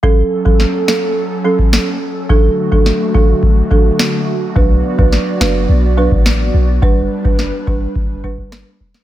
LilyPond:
<<
  \new Staff \with { instrumentName = "Marimba" } { \time 4/4 \key fis \phrygian \tempo 4 = 106 <fis cis' a'>8 r16 <fis cis' a'>8. <fis cis' a'>8 r8 <fis cis' a'>8 r4 | <fis d' a'>8 r16 <fis d' a'>8. <fis d' a'>8 r8 <fis d' a'>8 r4 | <fis d' b'>8 r16 <fis d' b'>8. <fis d' b'>8 r8 <fis d' b'>8 r4 | <g d' b'>8 r16 <g d' b'>8. <g d' b'>8 r8 <g d' b'>8 r4 | }
  \new Staff \with { instrumentName = "Analog synth pad" } { \time 4/4 \key fis \phrygian <fis cis' a'>1 | <d a fis'>1 | <b d''>1 | <g d' b'>1 | }
  \new Staff \with { instrumentName = "808-style bass" } { \clef bass \time 4/4 \key fis \phrygian r1 | r1 | b,,8 r16 b,,16 r8 fis,,8 b,,8. a,,8. b,,8 | g,,8 r16 g,,8 r16 fis,,16 r16 g,,8. g,,8 r16 e,,16 r16 | }
  \new DrumStaff \with { instrumentName = "Drums" } \drummode { \time 4/4 bd8. bd16 sn8 sn8 r8. bd16 sn4 | bd8. bd16 sn8 bd8 bd8 bd8 sn4 | bd8. bd16 sn8 sn8 r8. bd16 sn4 | bd8. bd16 sn8 bd8 bd8 bd8 <ss sn>8. sn16 | }
>>